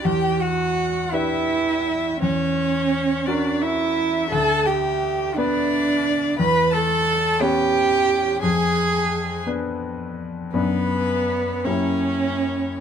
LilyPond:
<<
  \new Staff \with { instrumentName = "Violin" } { \time 6/8 \key b \minor \tempo 4. = 57 g''8 fis''4 e''4. | cis''4. d''8 e''4 | a''8 g''4 d''4. | b''8 a''4 g''4. |
aes''4. r4. | b'4. cis''4. | }
  \new Staff \with { instrumentName = "Cello" } { \time 6/8 \key b \minor g'8 fis'4 e'4. | cis'4. d'8 e'4 | a'8 g'4 d'4. | b'8 a'4 g'4. |
aes'4. r4. | b4. cis'4. | }
  \new Staff \with { instrumentName = "Grand piano" } { \time 6/8 \key b \minor e,4. <d' g' b'>4. | e,4. <cis' fis' ais'>4. | d,4. <b d' b'>4. | e,4. <b cis' cis''>4. |
f,4. <ces' d' ces''>4. | <fis, b d' b'>4. <fis, ais e' g'>4. | }
>>